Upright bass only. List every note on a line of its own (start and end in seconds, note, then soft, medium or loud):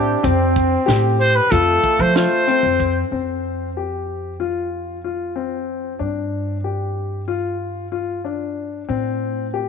0.00 0.14 A2 medium
0.24 0.74 F2 medium
0.88 1.38 A2 medium
1.52 1.77 F2 medium
1.99 2.24 F3 loud
2.63 3.01 F2 medium
3.11 5.96 F2 medium
6.00 8.85 G2 medium
8.89 9.69 A2 medium